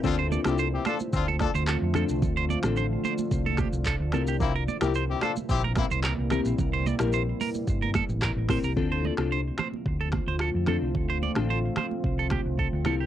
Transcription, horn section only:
\new Staff \with { instrumentName = "Horn section" } { \time 4/4 \key d \minor \tempo 4 = 110 <c' d' f'>16 r8 <c' e' g'>16 r16 <c' e' g'>16 <d' f' a'>16 r16 <c' d' f'>16 r16 <d' f' a'>16 r4 r16 | r1 | <bes c' e'>16 r8 <c' e' g'>16 r16 <c' e' g'>16 <d' f' a'>16 r16 <c' e' g'>16 r16 <bes c' e'>16 r4 r16 | r1 |
r1 | r1 | }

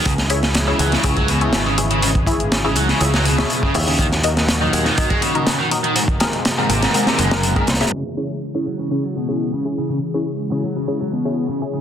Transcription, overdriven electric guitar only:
\new Staff \with { instrumentName = "Overdriven electric guitar" } { \clef bass \time 4/4 \key cis \dorian \tempo 4 = 122 cis16 r4 cis16 fis16 cis16 cis16 fis16 b,8. cis16 r16 cis16 | cis16 r4 cis16 fis16 cis16 cis16 fis16 b,8. cis16 r16 cis16 | dis16 r4 dis16 gis16 dis16 dis16 gis16 cis8. dis16 r16 dis16 | gis,16 r4 gis,16 bis,16 gis,16 gis,16 bis,16 fis,8. gis,16 r16 gis,16 |
cis16 r4 cis16 fis16 cis16 cis16 fis16 b,8. cis16 r16 cis16 | cis16 r4 cis16 fis16 cis16 cis16 fis16 b,8. cis16 r16 cis16 | }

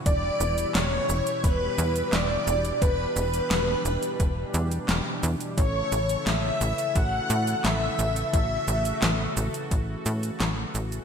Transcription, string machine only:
\new Staff \with { instrumentName = "String machine" } { \time 4/4 \key e \dorian \tempo 4 = 87 d''4 cis''4 b'4 d''4 | b'8 b'2 r4. | cis''4 e''4 fis''4 e''4 | e''4. r2 r8 | }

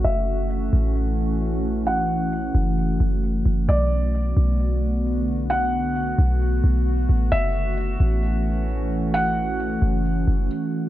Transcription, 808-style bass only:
\new Staff \with { instrumentName = "808-style bass" } { \clef bass \time 4/4 \key fis \phrygian \tempo 4 = 132 fis,,4. a,,2~ a,,8~ | a,,4. fis,,4 fis,,4 fis,,8 | b,,4. b,,2~ b,,8~ | b,,4. b,,4 b,,4 a,,8 |
fis,,4. a,,2~ a,,8~ | a,,4. fis,,4 fis,,8 r4 | }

